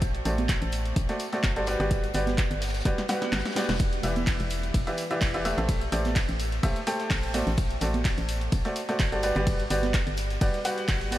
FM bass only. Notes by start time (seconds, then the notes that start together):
Already playing: A1
0.25 A1
0.62 A1
0.96 A1
1.44 G1
1.80 G1
2.14 G1
2.51 G1
2.85 G1
3.33 G1
3.69 E1
4.03 E1
4.40 E1
4.74 E1
5.22 E1
5.58 A1
5.92 A1
6.29 A1
6.63 A1
7.11 A1
7.47 A1
7.81 A1
8.18 A1
8.52 A1
9.00 G1
9.36 G1
9.70 G1
10.07 G1
10.41 G1
10.89 G1